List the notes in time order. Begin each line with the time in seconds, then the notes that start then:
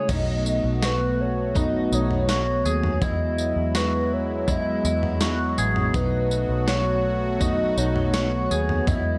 Already playing: C#5
0.09 B1 F#3 A3 B3 D#4 F#4 D#5, kick, floor tom, crash, tambourine
0.46 tambourine
0.64 B1
0.82 F#4 B4, snare, tambourine
1.21 C#5
1.55 D#4 D#5, kick, floor tom, tambourine
1.92 B1 D#4 C#5, tambourine
2.11 floor tom
2.29 F#4, snare, tambourine
2.65 D#2 G#4, tambourine
2.84 floor tom
3.02 E2 G#3 B3 E4 D#5, kick, floor tom, tambourine
3.38 tambourine
3.56 E2
3.75 F#4 B4, snare, tambourine
4.13 C#5
4.48 E4 D#5, kick, floor tom, tambourine
4.85 E2 E4, tambourine
5.03 floor tom
5.21 F#4, snare, tambourine
5.58 A1 G#4, tambourine
5.76 floor tom
5.94 B1 A3 D#4 F#4 B4, kick, floor tom, tambourine
6.31 tambourine
6.49 B1
6.68 F#4 C#5, snare, tambourine
7.41 D#4 D#5, kick, floor tom, tambourine
7.77 B1 D#4 C#5, tambourine
7.96 floor tom
8.14 F#4, snare, tambourine
8.51 D#2 G#4, tambourine
8.69 floor tom
8.87 E2 G#3 E4 D#5, kick, floor tom, tambourine